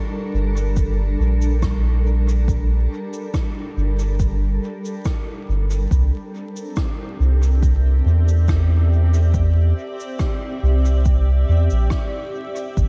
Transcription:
0.00 5.91 G3 medium
0.00 7.84 D4 medium
0.00 8.66 A4 medium
0.00 8.67 A#4 medium
0.34 1.16 G1 medium
0.57 cabasa medium
0.76 kick loud
0.76 cabasa medium
1.20 2.87 A#1 medium
1.42 cabasa medium
1.62 kick medium
1.62 cross-stick medium
1.62 cabasa medium
2.29 cabasa medium
2.48 kick medium
2.48 cabasa medium
3.13 cabasa medium
3.34 kick loud
3.34 cross-stick medium
3.34 cabasa soft
3.77 4.59 G1 medium
3.99 cabasa medium
4.20 kick loud
4.20 cabasa medium
4.85 cabasa medium
5.05 kick loud
5.05 cross-stick medium
5.05 cabasa medium
5.49 5.87 G1 medium
5.71 cabasa medium
5.91 6.11 C2 loud
5.91 12.88 C4 medium
5.91 kick loud
5.91 cabasa medium
6.20 12.88 G4 medium
6.57 cabasa medium
6.76 kick loud
6.76 cross-stick medium
6.76 cabasa soft
7.09 12.88 D5 medium
7.09 12.88 E5 medium
7.20 8.02 C2 medium
7.43 cabasa medium
7.63 kick loud
7.63 cabasa medium
8.06 9.73 E2 medium
8.28 cabasa medium
8.48 kick loud
8.48 cross-stick medium
8.48 cabasa medium
9.14 cabasa medium
9.34 kick loud
9.34 cabasa medium
10.00 cabasa medium
10.19 kick loud
10.19 cross-stick medium
10.19 cabasa medium
10.63 11.45 C2 medium
10.85 cabasa medium
11.05 kick loud
11.05 cabasa soft
11.49 11.69 E2 medium
11.70 11.89 A#1 medium
11.70 cabasa medium
11.90 kick loud
11.90 cross-stick medium
11.90 cabasa soft
12.56 cabasa medium
12.76 12.88 G1 loud
12.76 12.88 G3 medium
12.76 kick medium
12.76 cabasa medium

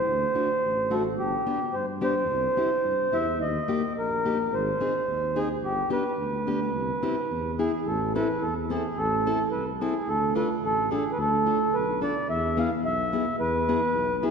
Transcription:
0.00 0.94 C5 medium
0.06 0.25 D2 medium
0.35 0.47 A3 medium
0.35 0.48 D4 soft
0.35 0.48 F#4 medium
0.63 1.19 A1 medium
0.91 1.03 A3 soft
0.91 1.03 D4 soft
0.91 1.03 F#4 medium
0.91 1.03 A4 medium
1.18 1.36 G1 medium
1.18 1.75 G4 medium
1.47 1.59 B3 medium
1.47 1.59 D4 soft
1.47 1.59 G4 medium
1.73 2.31 G2 medium
1.73 1.86 C5 medium
2.01 2.14 B3 medium
2.01 2.14 D4 soft
2.01 2.14 G4 medium
2.01 3.17 C5 medium
2.29 2.48 C2 loud
2.57 2.69 C4 medium
2.57 2.69 E4 soft
2.57 2.70 G4 medium
2.84 3.10 G2 medium
3.12 3.42 E2 medium
3.12 3.25 C4 soft
3.12 3.25 E4 soft
3.12 3.25 G4 soft
3.12 3.39 E5 medium
3.40 3.59 D#2 medium
3.40 3.93 D#5 medium
3.68 3.81 A#3 medium
3.68 3.81 D#4 soft
3.68 3.81 G4 medium
3.97 4.54 A#1 medium
3.97 4.55 A#4 medium
4.25 4.37 A#3 soft
4.25 4.38 D#4 soft
4.25 4.38 G4 medium
4.52 4.71 G#1 loud
4.52 5.39 C5 medium
4.81 4.93 C4 medium
4.81 4.93 D#4 soft
4.81 4.93 G#4 medium
5.08 5.65 D#2 medium
5.36 5.48 C4 soft
5.36 5.48 D#4 medium
5.36 5.48 G#4 medium
5.63 5.82 G1 medium
5.63 5.90 G4 medium
5.90 6.03 B3 medium
5.90 6.03 D4 medium
5.90 6.03 G4 medium
5.90 7.55 B4 medium
6.18 6.76 D2 medium
6.47 6.59 B3 medium
6.47 6.59 D4 soft
6.47 6.59 G4 medium
6.75 6.93 C2 medium
7.03 7.15 C4 medium
7.03 7.15 E4 medium
7.03 7.15 G4 medium
7.30 7.67 E2 medium
7.58 7.71 B3 medium
7.58 7.71 E4 medium
7.58 7.87 G#4 medium
7.58 7.71 G#4 medium
7.86 8.23 A1 medium
7.86 8.13 A4 medium
8.15 8.27 C4 medium
8.15 8.27 E4 medium
8.15 8.27 A4 medium
8.15 8.43 B4 medium
8.41 8.78 E2 medium
8.41 8.54 A4 medium
8.70 8.82 C4 soft
8.70 8.82 E4 soft
8.70 8.98 G#4 medium
8.70 8.82 A4 medium
8.97 9.33 A1 medium
8.97 9.49 A4 loud
9.27 9.38 C4 medium
9.27 9.38 E4 medium
9.27 9.38 A4 medium
9.51 9.89 C2 medium
9.51 9.64 B4 medium
9.81 9.93 C4 medium
9.81 9.94 E4 medium
9.81 10.09 G#4 medium
9.81 9.94 A4 medium
10.08 10.44 D2 medium
10.08 10.34 A4 loud
10.35 10.48 D4 medium
10.35 10.48 F4 medium
10.35 10.48 A4 medium
10.35 10.48 B4 medium
10.63 10.98 A1 medium
10.63 10.90 A4 loud
10.91 11.03 D4 medium
10.91 11.03 F4 soft
10.91 11.12 G#4 medium
10.91 11.03 A4 medium
11.12 11.18 B4 medium
11.17 11.53 D2 medium
11.17 11.75 A4 loud
11.46 11.58 D4 soft
11.46 11.58 F4 medium
11.46 11.59 A4 medium
11.73 12.09 B1 medium
11.73 12.00 B4 medium
12.01 12.14 D4 medium
12.01 12.14 F4 soft
12.01 12.14 A4 medium
12.01 12.28 D5 medium
12.29 12.65 E2 medium
12.29 12.58 E5 medium
12.57 12.69 B3 medium
12.57 12.69 E4 medium
12.57 12.70 G#4 medium
12.57 12.71 F5 medium
12.84 13.20 B1 medium
12.84 13.36 E5 loud
13.13 13.25 B3 medium
13.13 13.25 E4 soft
13.13 13.25 G#4 medium
13.39 13.75 E2 medium
13.39 14.25 B4 loud
13.69 13.80 B3 medium
13.69 13.80 E4 soft
13.69 13.81 G#4 medium
13.94 14.30 B1 medium
14.23 14.31 B3 medium
14.23 14.31 E4 medium
14.23 14.31 G#4 medium

